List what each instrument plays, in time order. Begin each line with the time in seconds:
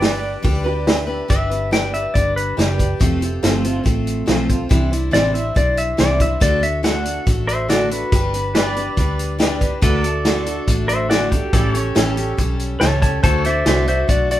Already playing: fingered electric bass G1, pedal steel guitar B4 D5 G5
0.01 steel-string acoustic guitar G3 D4 G4 B4, honky-tonk piano D4 G4 B4 D5, snare, open hi-hat
0.43 fingered electric bass D2, steel-string acoustic guitar G3 D4 G4 B4, kick, open hi-hat
0.64 honky-tonk piano D4 G4 B4 D5, steel-string acoustic guitar D4 G4 B4
0.87 honky-tonk piano D4 G4 B4 E5, snare, open hi-hat
1.07 steel-string acoustic guitar D4 G4 B4
1.28 fingered electric bass G1, steel-string acoustic guitar G3 D4 G4 B4, pedal steel guitar E5, kick, closed hi-hat
1.50 steel-string acoustic guitar D4 G4 B4, closed hi-hat
1.71 steel-string acoustic guitar G3 D4 G4 B4, honky-tonk piano G4 B4 D5, pedal steel guitar G5, snare, closed hi-hat
1.92 steel-string acoustic guitar D4 G4 B4, pedal steel guitar E5, closed hi-hat
2.14 fingered electric bass G1, steel-string acoustic guitar G3 D4 G4 B4, pedal steel guitar D5, kick, closed hi-hat
2.36 pedal steel guitar B4, closed hi-hat
2.57 fingered electric bass F#1, steel-string acoustic guitar G3 D4 G4 B4, honky-tonk piano G4 B4 D5, pedal steel guitar G4, snare, closed hi-hat
2.78 steel-string acoustic guitar D4 G4 B4, kick, closed hi-hat
3.00 fingered electric bass F1, steel-string acoustic guitar F3 A3 C4 F4 A4, kick, closed hi-hat
3.21 steel-string acoustic guitar C4 F4 A4, closed hi-hat
3.43 fingered electric bass G1, steel-string acoustic guitar F3 A3 C4 F4 A4, honky-tonk piano F4 A4 C5, snare, closed hi-hat
3.63 steel-string acoustic guitar C4 F4 A4, closed hi-hat
3.84 fingered electric bass A1, steel-string acoustic guitar A3 C4 F4 A4, kick, closed hi-hat
4.07 closed hi-hat
4.26 fingered electric bass B1, steel-string acoustic guitar F3 A3 C4 F4 A4, honky-tonk piano F4 A4 C5, snare, closed hi-hat
4.49 steel-string acoustic guitar C4 F4 A4, kick, closed hi-hat
4.69 fingered electric bass C2, steel-string acoustic guitar C3 E3 G3 D4 E4 C5, kick, closed hi-hat
4.91 steel-string acoustic guitar G3 D4 E4 C5, closed hi-hat
5.11 fingered electric bass A1, steel-string acoustic guitar C3 E3 G3 D4 E4 C5, honky-tonk piano E4 C5 D5, pedal steel guitar D5, snare, closed hi-hat
5.33 steel-string acoustic guitar G3 D4 E4 C5, pedal steel guitar E5, closed hi-hat
5.55 fingered electric bass B1, steel-string acoustic guitar G3 D4 E4 C5, pedal steel guitar D5, kick, closed hi-hat
5.77 pedal steel guitar E5, closed hi-hat
5.97 fingered electric bass C2, steel-string acoustic guitar C3 E3 G3 D4 E4 C5, honky-tonk piano E4 C5 D5, pedal steel guitar D5, snare, closed hi-hat
6.18 steel-string acoustic guitar G3 D4 E4 C5, pedal steel guitar E5, kick, closed hi-hat
6.40 fingered electric bass D2, steel-string acoustic guitar D3 A3 D4 F#4 A4, pedal steel guitar D5, kick, closed hi-hat
6.61 steel-string acoustic guitar D4 A4, pedal steel guitar E5, closed hi-hat
6.83 steel-string acoustic guitar D3 A3 D4 F#4 A4, honky-tonk piano F#4 A4 D5, pedal steel guitar F#5, snare, closed hi-hat
7.04 steel-string acoustic guitar D4 F#4 A4, closed hi-hat
7.26 fingered electric bass A1, steel-string acoustic guitar A3 D4 F#4 A4, kick, closed hi-hat
7.47 pedal steel guitar C5 E5, closed hi-hat
7.69 steel-string acoustic guitar D3 A3 D4 F#4 A4, pedal steel guitar F#4 D5, honky-tonk piano F#4 A4 D5, snare, closed hi-hat
7.89 steel-string acoustic guitar D4 F#4 A4, pedal steel guitar B4, closed hi-hat
8.12 fingered electric bass G1, steel-string acoustic guitar G3 D4 G4 B4, kick, closed hi-hat
8.34 steel-string acoustic guitar D4 G4 B4, closed hi-hat
8.55 steel-string acoustic guitar G3 D4 G4 B4, honky-tonk piano G4 B4 D5, pedal steel guitar B4 D5, snare, closed hi-hat
8.75 steel-string acoustic guitar D4 G4 B4, closed hi-hat
8.97 fingered electric bass D2, steel-string acoustic guitar G3 D4 G4 B4, kick, closed hi-hat
9.19 closed hi-hat
9.39 steel-string acoustic guitar G3 D4 G4 B4, honky-tonk piano G4 B4 D5, snare, closed hi-hat
9.60 steel-string acoustic guitar D4 G4 B4, kick, closed hi-hat
9.81 fingered electric bass D2, steel-string acoustic guitar D3 A3 D4 F#4 A4, pedal steel guitar B4 D5, kick, closed hi-hat
10.03 steel-string acoustic guitar D4 F#4 A4, closed hi-hat
10.08 pedal steel guitar A4
10.25 steel-string acoustic guitar D3 A3 D4 F#4 A4, honky-tonk piano F#4 A4 D5, snare, closed hi-hat
10.46 steel-string acoustic guitar D4 F#4 A4, closed hi-hat
10.67 fingered electric bass A1, steel-string acoustic guitar A3 D4 F#4 A4, kick, closed hi-hat
10.88 pedal steel guitar C5 E5, closed hi-hat
11.09 steel-string acoustic guitar D3 A3 D4 F#4 A4, honky-tonk piano F#4 A4 D5, pedal steel guitar F#4 D5, snare, closed hi-hat
11.31 steel-string acoustic guitar D4 F#4 A4, pedal steel guitar G4, kick, closed hi-hat
11.53 fingered electric bass A1, steel-string acoustic guitar A2 E3 G3 C#4 G4 A4, pedal steel guitar A4 D5, kick, closed hi-hat
11.74 steel-string acoustic guitar G3 C#4 G4 A4, pedal steel guitar C#5, closed hi-hat
11.95 fingered electric bass A1, steel-string acoustic guitar A2 E3 G3 C#4 G4 A4, honky-tonk piano G4 A4 C#5, snare, closed hi-hat
12.16 steel-string acoustic guitar G3 C#4 G4 A4, closed hi-hat
12.37 fingered electric bass B1, steel-string acoustic guitar G3 C#4 G4 A4, kick, closed hi-hat
12.59 closed hi-hat
12.80 fingered electric bass C#2, steel-string acoustic guitar A2 E3 G3 C#4 G4 A4, honky-tonk piano G4 A4 C#5, pedal steel guitar C#5 A5, snare, closed hi-hat
13.02 steel-string acoustic guitar G3 C#4 G4 A4, pedal steel guitar C#5 A5, kick, closed hi-hat
13.23 fingered electric bass D2, steel-string acoustic guitar D3 A3 D4 F#4 A4, pedal steel guitar A4 C5 C#5 A5, kick, closed hi-hat
13.44 steel-string acoustic guitar D4 F#4 A4, pedal steel guitar C5 D5 E5, closed hi-hat
13.66 fingered electric bass C2, steel-string acoustic guitar D3 A3 D4 F#4 A4, honky-tonk piano F#4 A4 D5, pedal steel guitar C5 E5, snare, closed hi-hat
13.87 steel-string acoustic guitar D4 F#4 A4, pedal steel guitar C5 E5, closed hi-hat
14.08 fingered electric bass B1, steel-string acoustic guitar A3 D4 F#4 A4, pedal steel guitar F#4 D5, kick, closed hi-hat
14.31 pedal steel guitar F#4 D5, closed hi-hat